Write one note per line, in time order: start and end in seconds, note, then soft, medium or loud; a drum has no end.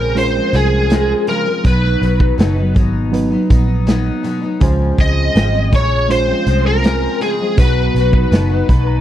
0.00 0.39 A#1 medium
0.00 0.35 C#3 medium
0.00 0.35 F3 medium
0.00 0.15 G#3 medium
0.00 0.35 G#3 medium
0.00 0.33 C4 medium
0.00 0.16 C#4 medium
0.00 0.17 F4 medium
0.00 1.67 G#4 medium
0.00 0.18 A#4 medium
0.15 1.35 G#3 medium
0.15 1.35 C#4 medium
0.15 1.35 F4 medium
0.15 0.24 A#4 medium
0.15 0.56 C5 medium
0.15 closed hi-hat medium
0.24 1.39 C5 medium
0.34 0.53 F3 soft
0.34 0.54 G#3 soft
0.34 0.53 C4 soft
0.53 1.13 C2 medium
0.53 0.89 F3 medium
0.53 0.90 G#3 medium
0.53 0.91 C4 medium
0.53 1.25 G#4 medium
0.53 closed hi-hat medium
0.90 1.27 F3 medium
0.90 1.28 G#3 medium
0.90 1.28 C4 medium
0.90 snare medium
0.90 closed hi-hat medium
1.27 1.46 C#3 medium
1.27 1.47 F3 medium
1.27 1.46 G#3 medium
1.27 1.45 C4 medium
1.27 1.66 A#4 medium
1.27 closed hi-hat medium
1.46 1.65 F3 soft
1.46 1.65 G#3 soft
1.46 1.65 C4 soft
1.63 1.95 B1 loud
1.63 1.99 B2 medium
1.63 2.83 F#3 medium
1.63 2.01 F#3 medium
1.63 2.83 B3 soft
1.63 2.02 B3 medium
1.63 2.84 D#4 medium
1.63 2.03 D#4 medium
1.63 2.84 B4 medium
1.63 2.73 B4 medium
1.63 kick loud
1.63 closed hi-hat medium
1.85 snare soft
2.01 2.31 B1 medium
2.01 2.37 B2 soft
2.01 2.38 F#3 medium
2.01 2.38 B3 medium
2.01 2.39 D#4 soft
2.01 closed hi-hat medium
2.20 kick medium
2.38 2.76 F#1 medium
2.38 2.57 B2 medium
2.38 2.57 F#3 medium
2.38 2.57 B3 medium
2.38 2.55 D#4 medium
2.38 snare loud
2.38 closed hi-hat medium
2.56 2.75 F#3 soft
2.56 2.76 B3 soft
2.56 2.75 D#4 medium
2.75 3.35 G#1 medium
2.75 3.31 B2 medium
2.75 3.32 F#3 medium
2.75 3.31 B3 medium
2.75 3.29 D#4 medium
2.75 kick loud
2.75 closed hi-hat medium
3.12 4.31 F#3 medium
3.12 4.32 B3 medium
3.12 4.32 D#4 medium
3.12 4.33 B4 medium
3.12 closed hi-hat medium
3.30 3.49 F#3 soft
3.30 3.50 B3 soft
3.30 3.49 D#4 soft
3.50 4.10 A#1 medium
3.50 3.85 F#3 medium
3.50 3.87 B3 medium
3.50 3.87 D#4 medium
3.50 kick medium
3.50 closed hi-hat medium
3.87 4.23 F#3 medium
3.87 4.24 B3 medium
3.87 4.25 D#4 medium
3.87 snare medium
3.87 closed hi-hat medium
4.23 4.42 B2 medium
4.23 4.43 F#3 medium
4.23 4.42 B3 medium
4.23 4.40 D#4 medium
4.23 closed hi-hat medium
4.42 4.61 F#3 soft
4.42 4.62 B3 soft
4.42 4.61 D#4 soft
4.60 4.91 C#2 medium
4.60 4.96 C#3 medium
4.60 4.97 F3 medium
4.60 5.79 G#3 medium
4.60 4.98 G#3 medium
4.60 4.99 C4 medium
4.60 5.80 C#4 medium
4.60 5.80 F4 medium
4.60 5.81 C5 medium
4.60 kick loud
4.60 closed hi-hat medium
4.97 5.28 C#2 medium
4.97 5.34 C#3 medium
4.97 5.35 G#3 medium
4.97 5.36 C4 medium
4.97 5.75 D#5 loud
4.97 kick medium
4.97 closed hi-hat medium
5.35 5.73 G#1 loud
5.35 5.54 C#3 medium
5.35 5.54 F3 medium
5.35 5.53 G#3 medium
5.35 5.51 C4 medium
5.35 snare loud
5.35 closed hi-hat medium
5.53 5.71 F3 soft
5.53 5.72 G#3 soft
5.53 5.72 C4 medium
5.71 6.32 A#1 medium
5.71 6.27 C#3 medium
5.71 6.28 F3 medium
5.71 6.27 G#3 medium
5.71 6.08 C#5 medium
5.71 kick medium
5.71 closed hi-hat medium
6.09 7.28 G#3 medium
6.09 7.28 C#4 medium
6.09 7.29 F4 medium
6.09 6.66 C5 medium
6.09 7.29 C5 medium
6.09 closed hi-hat loud
6.27 6.45 F3 soft
6.27 6.46 G#3 soft
6.27 6.46 C4 medium
6.46 7.06 C2 medium
6.46 6.83 F3 medium
6.46 6.84 G#3 medium
6.46 6.85 C4 medium
6.46 closed hi-hat medium
6.67 7.22 A#4 medium
6.84 7.20 F3 medium
6.84 7.21 G#3 medium
6.84 7.22 C4 medium
6.84 snare medium
6.84 closed hi-hat medium
7.20 7.39 C#3 soft
7.20 7.39 F3 medium
7.20 7.40 G#3 medium
7.20 7.38 C4 medium
7.20 7.56 G#4 medium
7.20 closed hi-hat medium
7.39 7.59 F3 soft
7.39 7.57 G#3 soft
7.39 7.57 C4 soft
7.57 7.88 B1 loud
7.57 7.94 B2 medium
7.57 8.76 F#3 medium
7.57 8.76 B3 soft
7.57 7.95 B3 medium
7.57 8.76 D#4 medium
7.57 7.95 D#4 medium
7.57 7.95 F#4 medium
7.57 8.77 B4 medium
7.57 9.01 B4 medium
7.57 kick loud
7.57 closed hi-hat medium
7.95 8.24 B1 medium
7.95 8.31 B2 soft
7.95 8.32 B3 medium
7.95 8.32 D#4 medium
7.95 8.33 F#4 medium
7.95 closed hi-hat medium
8.13 kick medium
8.32 8.61 F#1 medium
8.32 8.50 B2 medium
8.32 8.51 B3 medium
8.32 8.51 D#4 medium
8.32 8.49 F#4 medium
8.32 snare loud
8.32 closed hi-hat medium
8.50 8.69 B3 soft
8.50 8.70 D#4 soft
8.50 8.69 F#4 medium
8.68 8.99 B1 medium
8.68 9.01 B2 medium
8.68 9.01 B3 medium
8.68 9.01 D#4 medium
8.68 9.01 F#4 medium
8.68 8.86 B5 medium
8.68 kick medium
8.68 closed hi-hat medium
8.87 9.01 A#5 medium